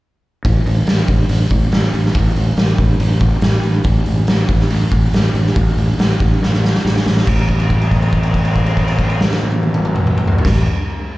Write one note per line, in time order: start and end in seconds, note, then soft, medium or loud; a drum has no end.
0.45 0.59 A1 medium
0.45 kick loud
0.45 open hi-hat medium
0.66 0.80 A1 medium
0.66 open hi-hat medium
0.87 1.02 A1 medium
0.87 snare medium
0.87 open hi-hat medium
1.08 1.23 A1 medium
1.08 kick medium
1.08 open hi-hat medium
1.29 1.44 A1 medium
1.29 open hi-hat medium
1.50 1.65 A1 loud
1.50 kick medium
1.50 open hi-hat medium
1.72 1.86 A1 loud
1.72 snare medium
1.72 open hi-hat medium
1.93 2.08 A1 medium
1.93 open hi-hat medium
2.05 snare soft
2.15 2.29 A1 medium
2.15 kick loud
2.15 open hi-hat medium
2.36 2.50 A1 medium
2.36 open hi-hat medium
2.57 2.72 A1 medium
2.57 snare medium
2.57 open hi-hat medium
2.78 2.93 A1 medium
2.78 kick medium
2.78 open hi-hat medium
3.00 3.28 A1 medium
3.00 open hi-hat medium
3.20 kick medium
3.20 open hi-hat medium
3.42 3.56 A1 loud
3.42 snare loud
3.42 open hi-hat medium
3.63 3.78 A1 medium
3.63 open hi-hat medium
3.84 3.99 A1 medium
3.84 kick loud
3.84 open hi-hat medium
4.06 4.21 A1 medium
4.06 open hi-hat soft
4.27 4.42 A1 medium
4.27 snare loud
4.27 open hi-hat medium
4.49 4.63 A1 medium
4.49 kick medium
4.49 open hi-hat medium
4.61 snare soft
4.69 4.84 A1 medium
4.69 open hi-hat medium
4.92 5.06 A1 loud
4.92 kick medium
4.92 open hi-hat medium
5.13 5.27 A1 medium
5.13 snare loud
5.13 open hi-hat medium
5.34 5.49 A1 medium
5.34 open hi-hat medium
5.46 snare soft
5.56 5.70 A1 medium
5.56 kick loud
5.56 open hi-hat medium
5.77 5.91 A1 medium
5.77 open hi-hat medium
5.98 6.13 A1 medium
5.98 snare loud
5.98 open hi-hat medium
6.20 6.35 A1 medium
6.20 kick medium
6.20 open hi-hat medium
6.42 6.71 A1 medium
6.42 snare medium
6.53 snare medium
6.65 snare medium
6.75 snare medium
6.85 6.99 A1 medium
6.85 snare medium
6.96 snare medium
7.06 7.20 A1 medium
7.06 snare medium
7.17 snare medium
7.27 10.35 A1 medium
7.27 kick medium
7.27 crash medium
7.49 kick medium
7.49 crash soft
7.60 crash soft
7.70 kick medium
7.70 crash soft
7.81 crash soft
7.91 kick medium
7.91 crash soft
8.02 crash soft
8.13 kick medium
8.13 crash soft
8.23 crash soft
8.34 kick medium
8.34 crash soft
8.45 crash soft
8.56 kick medium
8.56 crash soft
8.66 crash soft
8.77 kick medium
8.77 crash soft
8.88 crash medium
8.99 kick medium
8.99 crash medium
9.10 crash medium
9.21 snare medium
9.31 snare medium
9.41 high tom medium
9.52 high tom medium
9.63 high tom medium
9.74 mid tom loud
9.85 mid tom medium
9.96 mid tom medium
10.07 mid tom loud
10.18 mid tom loud
10.28 floor tom medium
10.38 floor tom loud
10.45 10.62 A1 medium
10.45 kick loud
10.45 snare medium
10.45 crash loud